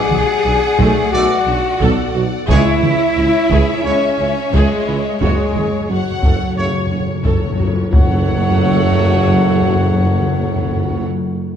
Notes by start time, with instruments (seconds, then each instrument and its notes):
Already playing: french horn section G#4, cello section G#4, violin section D5 F#5, flute G#5
0.10 tuba B1, double bass section B1, viola section F#4, taiko mid
0.44 tuba B1, double bass section B1, viola section D4
0.78 tuba B1, double bass section B1, viola section A3, taiko
1.12 double bass section B1, tuba B1, trombone section B2 A3, french horn section F#4, viola section F#4, cello section F#4, trumpet D5, flute F#5
1.46 tuba B1, double bass section B1, viola section D4
1.81 tuba B1, double bass section B1, viola section A4, taiko
2.14 tuba B1, double bass section B1, viola section F#4
2.48 tuba C#2, double bass section C#2, trombone section C#3 G#3, timpani C#3, french horn section E4, cello section E4, viola section G#4, violin section C#5 E5, trumpet C#5, flute E5, taiko
2.83 double bass section C#2, tuba C#2, viola section E4, taiko mid
3.17 tuba C#2, double bass section C#2, viola section C#4
3.50 tuba C#2, double bass section C#2, viola section G#4, taiko
3.82 tuba C#2, double bass section C#2, trombone section C#3 G#3, french horn section C#4, viola section E4, trumpet C#5, flute C#5
3.87 cello section C#4
4.19 tuba C#2, double bass section C#2, viola section C#4
4.53 double bass section C#2, tuba C#2, french horn section G#3, cello section G#3, flute G#4, viola section G#4, taiko
4.87 tuba C#2, double bass section C#2, viola section E4
5.20 tuba F#1, double bass section F#2, trombone section C#3 F#3, french horn section G#3, cello section G#3, viola section F#4, flute G#4, violin section C#5, trumpet C#5, taiko
5.29 timpani F#2
5.36 timpani F#2
5.44 timpani F#2
5.52 tuba F#1, timpani F#2, double bass section F#2, taiko mid
5.56 viola section F#4
5.66 timpani F#2
5.73 timpani F#2
5.80 timpani F#2
5.89 tuba F#1, timpani F#2, double bass section F#2, cello section F#3, french horn section F#3, viola section C#4, flute F#4, violin section F#5
5.96 timpani F#2
6.03 timpani F#2
6.11 timpani F#2
6.18 timpani F#2
6.23 tuba F#1, double bass section F#2, timpani F#2, viola section A4, taiko
6.33 timpani F#2
6.40 timpani F#2
6.47 timpani F#2
6.55 tuba F#1, timpani F#2, double bass section F#2, trombone section C#3 A3, viola section F#4, violin section C#5, trumpet C#5
6.63 timpani F#2
6.70 timpani F#2
6.78 timpani F#2
6.86 timpani F#2
6.90 tuba F#1, double bass section F#2, timpani F#2, viola section C#4
7.00 timpani F#2
7.07 timpani F#2
7.15 timpani F#2
7.23 tuba F#1, timpani F#2, double bass section F#2, viola section A4, violin section C#5, taiko
7.30 timpani F#2
7.37 timpani F#2
7.44 timpani F#2
7.52 timpani F#2
7.57 tuba F#1, double bass section F#2, timpani F#2, viola section F#4
7.67 timpani F#2
7.76 timpani F#2
7.83 timpani F#2
7.91 tuba F#1, timpani F#2, double bass section F#2, trombone section C#3 A3, french horn section F#3, cello section F#3, viola section A4, violin section C#5 F#5, trumpet C#5, flute F#5, taiko
8.00 timpani F#2
8.07 timpani F#2
8.14 timpani F#2
8.21 timpani F#2
8.28 timpani F#2
8.36 timpani F#2
8.42 timpani F#2
8.50 timpani F#2
8.57 timpani F#2
8.64 timpani F#2
8.71 timpani F#2
8.78 timpani F#2
8.85 timpani F#2
8.92 timpani F#2
8.99 timpani F#2
9.05 timpani F#2
9.13 timpani F#2
9.20 timpani F#2
9.27 timpani F#2
9.34 timpani F#2
9.42 timpani F#2
9.48 timpani F#2
9.55 timpani F#2
9.62 timpani F#2
9.68 timpani F#2
9.76 timpani F#2
9.83 timpani F#2
9.91 timpani F#2
9.98 timpani F#2
10.06 timpani F#2
10.13 timpani F#2
10.20 timpani F#2
10.27 timpani F#2
10.34 timpani F#2
10.42 timpani F#2
10.49 timpani F#2
10.56 timpani F#2
10.63 timpani F#2
10.70 timpani F#2
10.76 timpani F#2
10.83 timpani F#2
10.90 timpani F#2
10.97 timpani F#2